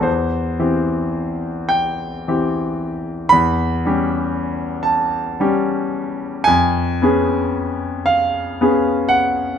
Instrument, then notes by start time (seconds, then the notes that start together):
grand piano
0.01 E2 C5
0.59 E3 C4 G4
1.69 G5
2.28 E3 C4 G4
3.29 E2 B5
3.85 G3 C#4 G4
4.83 A5
5.40 G3 C#4 G4
6.44 F2 G#5
7.02 B3 C#4 G#4
8.06 F5
8.61 B3 C#4 G#4
9.09 F#5